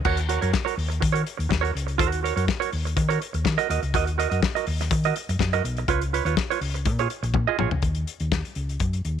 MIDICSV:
0, 0, Header, 1, 5, 480
1, 0, Start_track
1, 0, Key_signature, -6, "minor"
1, 0, Tempo, 486224
1, 51, Time_signature, 4, 2, 24, 8
1, 9082, End_track
2, 0, Start_track
2, 0, Title_t, "Clean electric guitar"
2, 0, Program_c, 0, 27
2, 50, Note_on_c, 0, 66, 91
2, 59, Note_on_c, 0, 70, 77
2, 65, Note_on_c, 0, 73, 94
2, 169, Note_off_c, 0, 73, 0
2, 179, Note_off_c, 0, 70, 0
2, 185, Note_off_c, 0, 66, 0
2, 283, Note_on_c, 0, 66, 64
2, 294, Note_on_c, 0, 70, 58
2, 297, Note_on_c, 0, 73, 66
2, 393, Note_off_c, 0, 66, 0
2, 396, Note_off_c, 0, 73, 0
2, 399, Note_off_c, 0, 70, 0
2, 408, Note_on_c, 0, 73, 58
2, 416, Note_on_c, 0, 70, 60
2, 425, Note_on_c, 0, 66, 51
2, 507, Note_off_c, 0, 73, 0
2, 511, Note_off_c, 0, 66, 0
2, 511, Note_off_c, 0, 70, 0
2, 640, Note_on_c, 0, 73, 80
2, 648, Note_on_c, 0, 70, 84
2, 654, Note_on_c, 0, 66, 73
2, 743, Note_off_c, 0, 66, 0
2, 749, Note_off_c, 0, 70, 0
2, 754, Note_off_c, 0, 73, 0
2, 1110, Note_on_c, 0, 73, 78
2, 1121, Note_on_c, 0, 70, 69
2, 1128, Note_on_c, 0, 66, 60
2, 1208, Note_off_c, 0, 66, 0
2, 1210, Note_off_c, 0, 70, 0
2, 1218, Note_off_c, 0, 73, 0
2, 1591, Note_on_c, 0, 73, 88
2, 1602, Note_on_c, 0, 70, 82
2, 1610, Note_on_c, 0, 66, 76
2, 1698, Note_off_c, 0, 66, 0
2, 1704, Note_off_c, 0, 70, 0
2, 1705, Note_off_c, 0, 73, 0
2, 1956, Note_on_c, 0, 66, 99
2, 1967, Note_on_c, 0, 70, 98
2, 1974, Note_on_c, 0, 73, 107
2, 2068, Note_off_c, 0, 73, 0
2, 2080, Note_off_c, 0, 70, 0
2, 2161, Note_off_c, 0, 66, 0
2, 2199, Note_on_c, 0, 66, 58
2, 2210, Note_on_c, 0, 70, 71
2, 2215, Note_on_c, 0, 73, 78
2, 2310, Note_off_c, 0, 66, 0
2, 2315, Note_off_c, 0, 70, 0
2, 2317, Note_off_c, 0, 73, 0
2, 2328, Note_on_c, 0, 73, 67
2, 2337, Note_on_c, 0, 70, 57
2, 2342, Note_on_c, 0, 66, 52
2, 2426, Note_off_c, 0, 73, 0
2, 2427, Note_off_c, 0, 66, 0
2, 2430, Note_off_c, 0, 70, 0
2, 2566, Note_on_c, 0, 73, 84
2, 2569, Note_on_c, 0, 70, 71
2, 2577, Note_on_c, 0, 66, 73
2, 2674, Note_off_c, 0, 66, 0
2, 2677, Note_off_c, 0, 70, 0
2, 2683, Note_off_c, 0, 73, 0
2, 3046, Note_on_c, 0, 73, 75
2, 3053, Note_on_c, 0, 70, 79
2, 3066, Note_on_c, 0, 66, 59
2, 3153, Note_off_c, 0, 66, 0
2, 3157, Note_off_c, 0, 70, 0
2, 3166, Note_off_c, 0, 73, 0
2, 3532, Note_on_c, 0, 75, 93
2, 3533, Note_on_c, 0, 70, 86
2, 3547, Note_on_c, 0, 66, 68
2, 3635, Note_off_c, 0, 66, 0
2, 3643, Note_off_c, 0, 70, 0
2, 3646, Note_on_c, 0, 66, 64
2, 3649, Note_off_c, 0, 75, 0
2, 3655, Note_on_c, 0, 70, 68
2, 3661, Note_on_c, 0, 75, 82
2, 3752, Note_off_c, 0, 66, 0
2, 3756, Note_off_c, 0, 70, 0
2, 3759, Note_off_c, 0, 75, 0
2, 3896, Note_on_c, 0, 66, 92
2, 3902, Note_on_c, 0, 70, 98
2, 3910, Note_on_c, 0, 75, 116
2, 4005, Note_off_c, 0, 75, 0
2, 4014, Note_off_c, 0, 70, 0
2, 4025, Note_off_c, 0, 66, 0
2, 4125, Note_on_c, 0, 66, 61
2, 4133, Note_on_c, 0, 70, 77
2, 4141, Note_on_c, 0, 75, 76
2, 4231, Note_off_c, 0, 66, 0
2, 4232, Note_off_c, 0, 75, 0
2, 4235, Note_off_c, 0, 70, 0
2, 4243, Note_on_c, 0, 75, 62
2, 4255, Note_on_c, 0, 70, 60
2, 4263, Note_on_c, 0, 66, 46
2, 4342, Note_off_c, 0, 75, 0
2, 4347, Note_off_c, 0, 70, 0
2, 4351, Note_off_c, 0, 66, 0
2, 4494, Note_on_c, 0, 75, 81
2, 4507, Note_on_c, 0, 70, 71
2, 4508, Note_on_c, 0, 66, 67
2, 4600, Note_off_c, 0, 66, 0
2, 4605, Note_off_c, 0, 70, 0
2, 4610, Note_off_c, 0, 75, 0
2, 4987, Note_on_c, 0, 75, 75
2, 4992, Note_on_c, 0, 70, 65
2, 5002, Note_on_c, 0, 66, 65
2, 5088, Note_off_c, 0, 66, 0
2, 5092, Note_off_c, 0, 70, 0
2, 5098, Note_off_c, 0, 75, 0
2, 5461, Note_on_c, 0, 75, 91
2, 5466, Note_on_c, 0, 70, 89
2, 5476, Note_on_c, 0, 66, 71
2, 5563, Note_off_c, 0, 66, 0
2, 5567, Note_off_c, 0, 70, 0
2, 5572, Note_off_c, 0, 75, 0
2, 5810, Note_on_c, 0, 65, 96
2, 5822, Note_on_c, 0, 71, 90
2, 5825, Note_on_c, 0, 73, 92
2, 5932, Note_off_c, 0, 73, 0
2, 5941, Note_off_c, 0, 65, 0
2, 5942, Note_off_c, 0, 71, 0
2, 6053, Note_on_c, 0, 65, 56
2, 6059, Note_on_c, 0, 71, 69
2, 6066, Note_on_c, 0, 73, 60
2, 6154, Note_off_c, 0, 65, 0
2, 6157, Note_off_c, 0, 71, 0
2, 6160, Note_off_c, 0, 73, 0
2, 6171, Note_on_c, 0, 73, 65
2, 6181, Note_on_c, 0, 71, 60
2, 6185, Note_on_c, 0, 65, 54
2, 6264, Note_off_c, 0, 73, 0
2, 6269, Note_off_c, 0, 71, 0
2, 6271, Note_off_c, 0, 65, 0
2, 6421, Note_on_c, 0, 73, 94
2, 6427, Note_on_c, 0, 71, 78
2, 6435, Note_on_c, 0, 65, 83
2, 6517, Note_off_c, 0, 65, 0
2, 6524, Note_off_c, 0, 71, 0
2, 6530, Note_off_c, 0, 73, 0
2, 6904, Note_on_c, 0, 73, 77
2, 6911, Note_on_c, 0, 68, 76
2, 6920, Note_on_c, 0, 65, 68
2, 6999, Note_off_c, 0, 65, 0
2, 7003, Note_off_c, 0, 68, 0
2, 7006, Note_off_c, 0, 73, 0
2, 7379, Note_on_c, 0, 75, 84
2, 7388, Note_on_c, 0, 68, 72
2, 7390, Note_on_c, 0, 65, 71
2, 7478, Note_off_c, 0, 65, 0
2, 7484, Note_off_c, 0, 68, 0
2, 7489, Note_on_c, 0, 65, 67
2, 7496, Note_off_c, 0, 75, 0
2, 7496, Note_on_c, 0, 68, 74
2, 7506, Note_on_c, 0, 73, 83
2, 7593, Note_off_c, 0, 65, 0
2, 7596, Note_off_c, 0, 68, 0
2, 7601, Note_off_c, 0, 73, 0
2, 9082, End_track
3, 0, Start_track
3, 0, Title_t, "Fingered electric bass"
3, 0, Program_c, 1, 33
3, 54, Note_on_c, 1, 39, 90
3, 362, Note_off_c, 1, 39, 0
3, 418, Note_on_c, 1, 42, 92
3, 513, Note_off_c, 1, 42, 0
3, 765, Note_on_c, 1, 39, 97
3, 969, Note_off_c, 1, 39, 0
3, 1011, Note_on_c, 1, 51, 96
3, 1213, Note_off_c, 1, 51, 0
3, 1372, Note_on_c, 1, 39, 91
3, 1469, Note_off_c, 1, 39, 0
3, 1486, Note_on_c, 1, 39, 99
3, 1690, Note_off_c, 1, 39, 0
3, 1728, Note_on_c, 1, 37, 89
3, 1969, Note_off_c, 1, 37, 0
3, 1969, Note_on_c, 1, 39, 97
3, 2278, Note_off_c, 1, 39, 0
3, 2334, Note_on_c, 1, 42, 88
3, 2430, Note_off_c, 1, 42, 0
3, 2695, Note_on_c, 1, 39, 82
3, 2894, Note_off_c, 1, 39, 0
3, 2931, Note_on_c, 1, 51, 108
3, 3131, Note_off_c, 1, 51, 0
3, 3298, Note_on_c, 1, 39, 81
3, 3391, Note_off_c, 1, 39, 0
3, 3409, Note_on_c, 1, 51, 112
3, 3515, Note_off_c, 1, 51, 0
3, 3650, Note_on_c, 1, 39, 101
3, 3755, Note_off_c, 1, 39, 0
3, 3775, Note_on_c, 1, 37, 87
3, 3890, Note_off_c, 1, 37, 0
3, 3890, Note_on_c, 1, 39, 98
3, 4197, Note_off_c, 1, 39, 0
3, 4259, Note_on_c, 1, 42, 82
3, 4351, Note_off_c, 1, 42, 0
3, 4614, Note_on_c, 1, 39, 89
3, 4812, Note_off_c, 1, 39, 0
3, 4845, Note_on_c, 1, 51, 112
3, 5046, Note_off_c, 1, 51, 0
3, 5222, Note_on_c, 1, 42, 93
3, 5312, Note_off_c, 1, 42, 0
3, 5327, Note_on_c, 1, 42, 114
3, 5527, Note_off_c, 1, 42, 0
3, 5570, Note_on_c, 1, 35, 97
3, 5769, Note_off_c, 1, 35, 0
3, 5807, Note_on_c, 1, 37, 99
3, 6115, Note_off_c, 1, 37, 0
3, 6172, Note_on_c, 1, 39, 90
3, 6266, Note_off_c, 1, 39, 0
3, 6527, Note_on_c, 1, 37, 80
3, 6767, Note_on_c, 1, 46, 105
3, 6781, Note_off_c, 1, 37, 0
3, 6967, Note_off_c, 1, 46, 0
3, 7134, Note_on_c, 1, 34, 92
3, 7228, Note_off_c, 1, 34, 0
3, 7243, Note_on_c, 1, 46, 114
3, 7350, Note_off_c, 1, 46, 0
3, 7487, Note_on_c, 1, 34, 104
3, 7593, Note_off_c, 1, 34, 0
3, 7619, Note_on_c, 1, 37, 87
3, 7711, Note_off_c, 1, 37, 0
3, 7727, Note_on_c, 1, 39, 81
3, 7929, Note_off_c, 1, 39, 0
3, 8099, Note_on_c, 1, 39, 77
3, 8300, Note_off_c, 1, 39, 0
3, 8450, Note_on_c, 1, 37, 76
3, 8652, Note_off_c, 1, 37, 0
3, 8693, Note_on_c, 1, 42, 88
3, 8895, Note_off_c, 1, 42, 0
3, 8932, Note_on_c, 1, 39, 72
3, 9082, Note_off_c, 1, 39, 0
3, 9082, End_track
4, 0, Start_track
4, 0, Title_t, "Muted clean electric guitar strokes"
4, 180, Note_on_c, 9, 29, 46
4, 279, Note_off_c, 9, 29, 0
4, 523, Note_on_c, 9, 29, 41
4, 621, Note_off_c, 9, 29, 0
4, 755, Note_on_c, 9, 29, 36
4, 853, Note_off_c, 9, 29, 0
4, 874, Note_on_c, 9, 29, 53
4, 973, Note_off_c, 9, 29, 0
4, 992, Note_on_c, 9, 29, 45
4, 1091, Note_off_c, 9, 29, 0
4, 1220, Note_on_c, 9, 29, 38
4, 1319, Note_off_c, 9, 29, 0
4, 1357, Note_on_c, 9, 29, 44
4, 1456, Note_off_c, 9, 29, 0
4, 1473, Note_on_c, 9, 29, 44
4, 1572, Note_off_c, 9, 29, 0
4, 1710, Note_on_c, 9, 29, 41
4, 1809, Note_off_c, 9, 29, 0
4, 1843, Note_on_c, 9, 29, 59
4, 1941, Note_off_c, 9, 29, 0
4, 2080, Note_on_c, 9, 29, 45
4, 2179, Note_off_c, 9, 29, 0
4, 2439, Note_on_c, 9, 29, 46
4, 2537, Note_off_c, 9, 29, 0
4, 2686, Note_on_c, 9, 29, 37
4, 2784, Note_off_c, 9, 29, 0
4, 2817, Note_on_c, 9, 29, 52
4, 2915, Note_off_c, 9, 29, 0
4, 2927, Note_on_c, 9, 29, 40
4, 3026, Note_off_c, 9, 29, 0
4, 3165, Note_on_c, 9, 29, 42
4, 3263, Note_off_c, 9, 29, 0
4, 3289, Note_on_c, 9, 29, 43
4, 3388, Note_off_c, 9, 29, 0
4, 3401, Note_on_c, 9, 29, 33
4, 3500, Note_off_c, 9, 29, 0
4, 3780, Note_on_c, 9, 29, 55
4, 3879, Note_off_c, 9, 29, 0
4, 4017, Note_on_c, 9, 29, 55
4, 4116, Note_off_c, 9, 29, 0
4, 4367, Note_on_c, 9, 29, 40
4, 4466, Note_off_c, 9, 29, 0
4, 4612, Note_on_c, 9, 29, 41
4, 4710, Note_off_c, 9, 29, 0
4, 4747, Note_on_c, 9, 29, 53
4, 4846, Note_off_c, 9, 29, 0
4, 4852, Note_on_c, 9, 29, 49
4, 4951, Note_off_c, 9, 29, 0
4, 5100, Note_on_c, 9, 29, 46
4, 5198, Note_off_c, 9, 29, 0
4, 5226, Note_on_c, 9, 29, 47
4, 5325, Note_off_c, 9, 29, 0
4, 5336, Note_on_c, 9, 29, 43
4, 5435, Note_off_c, 9, 29, 0
4, 5575, Note_on_c, 9, 29, 51
4, 5674, Note_off_c, 9, 29, 0
4, 5710, Note_on_c, 9, 29, 56
4, 5809, Note_off_c, 9, 29, 0
4, 5944, Note_on_c, 9, 29, 35
4, 6043, Note_off_c, 9, 29, 0
4, 6529, Note_on_c, 9, 29, 40
4, 6627, Note_off_c, 9, 29, 0
4, 6658, Note_on_c, 9, 29, 43
4, 6756, Note_off_c, 9, 29, 0
4, 6778, Note_on_c, 9, 29, 37
4, 6877, Note_off_c, 9, 29, 0
4, 7011, Note_on_c, 9, 29, 37
4, 7110, Note_off_c, 9, 29, 0
4, 7134, Note_on_c, 9, 29, 50
4, 7233, Note_off_c, 9, 29, 0
4, 7255, Note_on_c, 9, 29, 34
4, 7353, Note_off_c, 9, 29, 0
4, 9082, End_track
5, 0, Start_track
5, 0, Title_t, "Drums"
5, 46, Note_on_c, 9, 49, 82
5, 50, Note_on_c, 9, 36, 106
5, 145, Note_off_c, 9, 49, 0
5, 149, Note_off_c, 9, 36, 0
5, 169, Note_on_c, 9, 42, 50
5, 268, Note_off_c, 9, 42, 0
5, 289, Note_on_c, 9, 42, 84
5, 388, Note_off_c, 9, 42, 0
5, 416, Note_on_c, 9, 42, 48
5, 514, Note_off_c, 9, 42, 0
5, 528, Note_on_c, 9, 38, 124
5, 531, Note_on_c, 9, 36, 117
5, 627, Note_off_c, 9, 38, 0
5, 630, Note_off_c, 9, 36, 0
5, 666, Note_on_c, 9, 42, 56
5, 765, Note_off_c, 9, 42, 0
5, 776, Note_on_c, 9, 46, 70
5, 875, Note_off_c, 9, 46, 0
5, 905, Note_on_c, 9, 42, 53
5, 1004, Note_off_c, 9, 42, 0
5, 1010, Note_on_c, 9, 36, 118
5, 1010, Note_on_c, 9, 42, 89
5, 1108, Note_off_c, 9, 36, 0
5, 1109, Note_off_c, 9, 42, 0
5, 1140, Note_on_c, 9, 42, 51
5, 1238, Note_off_c, 9, 42, 0
5, 1249, Note_on_c, 9, 42, 65
5, 1348, Note_off_c, 9, 42, 0
5, 1382, Note_on_c, 9, 42, 49
5, 1481, Note_off_c, 9, 42, 0
5, 1487, Note_on_c, 9, 36, 94
5, 1499, Note_on_c, 9, 38, 112
5, 1585, Note_off_c, 9, 36, 0
5, 1598, Note_off_c, 9, 38, 0
5, 1626, Note_on_c, 9, 42, 45
5, 1725, Note_off_c, 9, 42, 0
5, 1743, Note_on_c, 9, 42, 75
5, 1842, Note_off_c, 9, 42, 0
5, 1856, Note_on_c, 9, 42, 41
5, 1955, Note_off_c, 9, 42, 0
5, 1968, Note_on_c, 9, 36, 113
5, 1973, Note_on_c, 9, 42, 75
5, 2067, Note_off_c, 9, 36, 0
5, 2071, Note_off_c, 9, 42, 0
5, 2095, Note_on_c, 9, 42, 54
5, 2194, Note_off_c, 9, 42, 0
5, 2225, Note_on_c, 9, 42, 71
5, 2324, Note_off_c, 9, 42, 0
5, 2342, Note_on_c, 9, 42, 51
5, 2441, Note_off_c, 9, 42, 0
5, 2451, Note_on_c, 9, 36, 107
5, 2455, Note_on_c, 9, 38, 115
5, 2549, Note_off_c, 9, 36, 0
5, 2554, Note_off_c, 9, 38, 0
5, 2586, Note_on_c, 9, 42, 61
5, 2684, Note_off_c, 9, 42, 0
5, 2690, Note_on_c, 9, 46, 73
5, 2789, Note_off_c, 9, 46, 0
5, 2832, Note_on_c, 9, 42, 54
5, 2929, Note_on_c, 9, 36, 116
5, 2930, Note_off_c, 9, 42, 0
5, 2931, Note_on_c, 9, 42, 79
5, 3028, Note_off_c, 9, 36, 0
5, 3030, Note_off_c, 9, 42, 0
5, 3063, Note_on_c, 9, 42, 49
5, 3161, Note_off_c, 9, 42, 0
5, 3175, Note_on_c, 9, 42, 59
5, 3273, Note_off_c, 9, 42, 0
5, 3297, Note_on_c, 9, 42, 45
5, 3396, Note_off_c, 9, 42, 0
5, 3405, Note_on_c, 9, 36, 95
5, 3411, Note_on_c, 9, 38, 124
5, 3503, Note_off_c, 9, 36, 0
5, 3510, Note_off_c, 9, 38, 0
5, 3541, Note_on_c, 9, 42, 49
5, 3640, Note_off_c, 9, 42, 0
5, 3657, Note_on_c, 9, 42, 68
5, 3756, Note_off_c, 9, 42, 0
5, 3777, Note_on_c, 9, 42, 43
5, 3876, Note_off_c, 9, 42, 0
5, 3889, Note_on_c, 9, 36, 104
5, 3896, Note_on_c, 9, 42, 87
5, 3988, Note_off_c, 9, 36, 0
5, 3994, Note_off_c, 9, 42, 0
5, 4019, Note_on_c, 9, 42, 54
5, 4118, Note_off_c, 9, 42, 0
5, 4142, Note_on_c, 9, 42, 78
5, 4241, Note_off_c, 9, 42, 0
5, 4259, Note_on_c, 9, 42, 51
5, 4358, Note_off_c, 9, 42, 0
5, 4369, Note_on_c, 9, 36, 115
5, 4371, Note_on_c, 9, 38, 115
5, 4467, Note_off_c, 9, 36, 0
5, 4469, Note_off_c, 9, 38, 0
5, 4505, Note_on_c, 9, 42, 57
5, 4604, Note_off_c, 9, 42, 0
5, 4606, Note_on_c, 9, 46, 76
5, 4705, Note_off_c, 9, 46, 0
5, 4744, Note_on_c, 9, 38, 39
5, 4744, Note_on_c, 9, 42, 59
5, 4843, Note_off_c, 9, 38, 0
5, 4843, Note_off_c, 9, 42, 0
5, 4846, Note_on_c, 9, 36, 126
5, 4846, Note_on_c, 9, 42, 85
5, 4944, Note_off_c, 9, 42, 0
5, 4945, Note_off_c, 9, 36, 0
5, 4973, Note_on_c, 9, 42, 44
5, 5071, Note_off_c, 9, 42, 0
5, 5092, Note_on_c, 9, 42, 65
5, 5190, Note_off_c, 9, 42, 0
5, 5223, Note_on_c, 9, 42, 51
5, 5322, Note_off_c, 9, 42, 0
5, 5324, Note_on_c, 9, 36, 99
5, 5335, Note_on_c, 9, 38, 109
5, 5423, Note_off_c, 9, 36, 0
5, 5434, Note_off_c, 9, 38, 0
5, 5460, Note_on_c, 9, 42, 44
5, 5559, Note_off_c, 9, 42, 0
5, 5579, Note_on_c, 9, 42, 69
5, 5678, Note_off_c, 9, 42, 0
5, 5692, Note_on_c, 9, 42, 44
5, 5791, Note_off_c, 9, 42, 0
5, 5806, Note_on_c, 9, 36, 110
5, 5810, Note_on_c, 9, 42, 79
5, 5905, Note_off_c, 9, 36, 0
5, 5909, Note_off_c, 9, 42, 0
5, 5937, Note_on_c, 9, 42, 53
5, 6036, Note_off_c, 9, 42, 0
5, 6062, Note_on_c, 9, 42, 75
5, 6161, Note_off_c, 9, 42, 0
5, 6179, Note_on_c, 9, 42, 48
5, 6277, Note_off_c, 9, 42, 0
5, 6289, Note_on_c, 9, 36, 108
5, 6289, Note_on_c, 9, 38, 116
5, 6387, Note_off_c, 9, 36, 0
5, 6388, Note_off_c, 9, 38, 0
5, 6429, Note_on_c, 9, 42, 57
5, 6528, Note_off_c, 9, 42, 0
5, 6530, Note_on_c, 9, 46, 75
5, 6629, Note_off_c, 9, 46, 0
5, 6671, Note_on_c, 9, 42, 53
5, 6765, Note_off_c, 9, 42, 0
5, 6765, Note_on_c, 9, 42, 86
5, 6768, Note_on_c, 9, 36, 109
5, 6864, Note_off_c, 9, 42, 0
5, 6867, Note_off_c, 9, 36, 0
5, 6899, Note_on_c, 9, 42, 49
5, 6998, Note_off_c, 9, 42, 0
5, 7010, Note_on_c, 9, 42, 61
5, 7108, Note_off_c, 9, 42, 0
5, 7142, Note_on_c, 9, 42, 48
5, 7241, Note_off_c, 9, 42, 0
5, 7243, Note_on_c, 9, 36, 95
5, 7249, Note_on_c, 9, 48, 62
5, 7342, Note_off_c, 9, 36, 0
5, 7348, Note_off_c, 9, 48, 0
5, 7490, Note_on_c, 9, 45, 95
5, 7589, Note_off_c, 9, 45, 0
5, 7614, Note_on_c, 9, 43, 100
5, 7713, Note_off_c, 9, 43, 0
5, 7721, Note_on_c, 9, 42, 69
5, 7725, Note_on_c, 9, 36, 92
5, 7819, Note_off_c, 9, 42, 0
5, 7824, Note_off_c, 9, 36, 0
5, 7845, Note_on_c, 9, 42, 42
5, 7944, Note_off_c, 9, 42, 0
5, 7970, Note_on_c, 9, 42, 61
5, 8069, Note_off_c, 9, 42, 0
5, 8093, Note_on_c, 9, 42, 45
5, 8191, Note_off_c, 9, 42, 0
5, 8211, Note_on_c, 9, 36, 102
5, 8213, Note_on_c, 9, 38, 100
5, 8309, Note_off_c, 9, 36, 0
5, 8311, Note_off_c, 9, 38, 0
5, 8341, Note_on_c, 9, 42, 47
5, 8440, Note_off_c, 9, 42, 0
5, 8443, Note_on_c, 9, 42, 57
5, 8542, Note_off_c, 9, 42, 0
5, 8581, Note_on_c, 9, 42, 43
5, 8680, Note_off_c, 9, 42, 0
5, 8683, Note_on_c, 9, 42, 72
5, 8690, Note_on_c, 9, 36, 94
5, 8782, Note_off_c, 9, 42, 0
5, 8789, Note_off_c, 9, 36, 0
5, 8818, Note_on_c, 9, 42, 46
5, 8917, Note_off_c, 9, 42, 0
5, 8931, Note_on_c, 9, 42, 53
5, 9030, Note_off_c, 9, 42, 0
5, 9082, End_track
0, 0, End_of_file